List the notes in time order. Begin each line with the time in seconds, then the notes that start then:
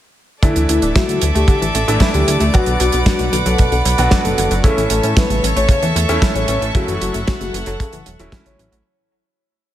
0.43 D3 E3 A3 D4 E4 A4 D5 E5 D6, kick, closed hi-hat
0.56 D2 E3, closed hi-hat
0.69 D2 A3 E4, closed hi-hat
0.82 D1 D4, closed hi-hat
0.96 E4 F#4, kick, snare, closed hi-hat
1.09 D2 D3, closed hi-hat
1.21 D2 E3, closed hi-hat
1.35 D2 A3 G4, closed hi-hat
1.48 D3, kick, closed hi-hat
1.62 A1 E3, closed hi-hat
1.75 A1 A3, closed hi-hat
1.88 A1 E3 A3 D4 E4, closed hi-hat
2.00 E4, kick, snare, closed hi-hat
2.14 D2 D3 G4, closed hi-hat
2.27 D2 E3, closed hi-hat
2.40 D2 A3, closed hi-hat
2.54 B2 F#3 B3 D4 F#4 B4 F#5, kick, closed hi-hat
2.66 B1 D3, closed hi-hat
2.80 B1 F#3 F#4, closed hi-hat
2.92 B1 B3, closed hi-hat
3.06 D4 F#4, kick, snare, closed hi-hat
3.19 B1 B2, closed hi-hat
3.33 B1 D3, closed hi-hat
3.46 B1 F#3 A4, closed hi-hat
3.58 B2, kick, closed hi-hat
3.72 B1 D3, closed hi-hat
3.85 B1 F#3, closed hi-hat
3.98 B1 F#3 B3 D4 F#4, closed hi-hat
4.11 D4, kick, snare, closed hi-hat
4.24 F#1 B2 A4, closed hi-hat
4.38 F#1 D3, closed hi-hat
4.51 F#1 F#3, closed hi-hat
4.64 C#3 E3 A3 C#4 E4 A4 C#5 E5 C#6, kick, closed hi-hat
4.77 A1 E3, closed hi-hat
4.90 A1 A3 A4, closed hi-hat
5.03 A2 C#4, closed hi-hat
5.17 E4 B4, kick, snare, closed hi-hat
5.30 A1 C#3, closed hi-hat
5.43 A1 E3, closed hi-hat
5.56 A1 A3 C#5, closed hi-hat
5.69 C#3, kick, closed hi-hat
5.83 E2 E3, closed hi-hat
5.96 E2 A3, closed hi-hat
6.09 E2 E3 A3 C#4 E4, closed hi-hat
6.22 E4, kick, snare, closed hi-hat
6.35 A1 C#3 C#5, closed hi-hat
6.48 A1 E3, closed hi-hat
6.61 A1 A3, closed hi-hat
6.74 C#3 F#3 A3 C#4 E4 F#4 F#5, kick, closed hi-hat
6.88 F#1 E3, closed hi-hat
7.01 F#1 F#3 F#4, closed hi-hat
7.14 F#1 A3, closed hi-hat
7.27 C#4 F#4, kick, snare, closed hi-hat
7.41 F#1 C#3, closed hi-hat
7.54 F#1 E3, closed hi-hat
7.66 F#1 F#3 A4, closed hi-hat
7.80 C#3, kick, closed hi-hat
7.93 F#1 E3, closed hi-hat
8.06 E1 F#3, closed hi-hat
8.19 E1 F#3 A3 C#4 E4, closed hi-hat
8.32 F#3 A3 C#4 E4, kick, snare, closed hi-hat
8.46 A1 C#3 C#5, closed hi-hat
8.59 A1 E3, closed hi-hat
8.72 A1 F#3, closed hi-hat